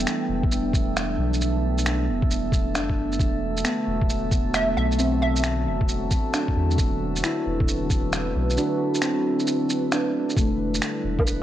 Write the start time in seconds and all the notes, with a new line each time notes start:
Already playing: E3 A3 B3 D4 A4 G5
0.07 finger snap, shaker
0.29 E1
0.43 kick
0.52 shaker
0.73 E1, kick, shaker
0.97 finger snap, shaker
1.18 B1
1.34 shaker
1.41 shaker
1.78 shaker
1.86 finger snap, shaker
2.08 E1
2.22 kick
2.31 shaker
2.52 kick, shaker
2.75 F#1 D4, finger snap, shaker
2.90 kick
3.12 G1, shaker
3.19 E1 D3 F#3 A3 F#4, kick, shaker
3.57 shaker
3.65 B3, finger snap, shaker
3.87 E1
4.01 kick
4.09 shaker
4.31 E1, kick, shaker
4.54 E5, finger snap, shaker
4.77 B1 E5
4.92 shaker
4.99 C4, shaker
5.22 E5
5.36 shaker
5.44 finger snap, shaker
5.66 E1
5.81 kick
5.89 shaker
6.11 kick, shaker
6.34 D4, finger snap, shaker
6.48 kick
6.56 E2
6.71 shaker
6.78 E1 B4, kick, shaker
7.16 shaker
7.24 E4, finger snap, shaker
7.46 E1
7.60 kick
7.68 shaker
7.90 E1, kick, shaker
8.13 finger snap, shaker
8.36 B1
8.50 shaker
8.57 D4 F#4, shaker
8.78 F#4
8.95 shaker
9.02 C4, finger snap, shaker
9.39 shaker
9.47 shaker
9.70 shaker
9.92 D4, finger snap, shaker
10.30 shaker
10.36 E1 D3 G3 A3 B3 E4 B4, kick, shaker
10.74 shaker
10.82 finger snap, shaker
11.04 E1
11.19 kick, low woodblock
11.27 shaker